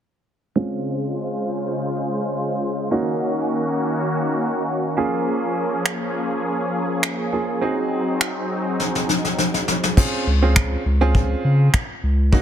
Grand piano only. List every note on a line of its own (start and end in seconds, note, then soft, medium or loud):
0.56 2.87 G#3 medium
0.56 2.87 C4 medium
0.56 2.87 C#4 medium
0.56 2.88 F4 medium
2.91 4.93 A#3 medium
2.91 4.93 C#4 medium
2.91 4.93 D#4 medium
2.91 4.93 F#4 medium
4.97 7.28 A#3 medium
4.97 7.28 C#4 medium
4.97 7.29 F4 medium
4.97 7.29 G#4 medium
7.32 7.62 A#3 medium
7.32 7.62 C#4 soft
7.32 7.62 F4 soft
7.32 7.61 G#4 medium
7.61 9.93 C4 medium
7.61 9.93 D#4 medium
7.61 9.93 F#4 medium
7.61 9.93 G#4 medium
9.97 10.26 C4 medium
9.97 10.27 C#4 medium
9.97 10.27 F4 medium
9.97 10.27 G#4 medium
10.42 10.81 C4 medium
10.42 10.81 C#4 medium
10.42 10.81 F4 medium
10.42 10.81 G#4 medium
11.01 11.79 C4 medium
11.01 11.79 C#4 medium
11.01 11.79 F4 medium
11.01 11.79 G#4 medium
12.32 12.42 A#3 medium
12.32 12.42 C#4 medium
12.32 12.42 D#4 medium
12.32 12.42 F#4 medium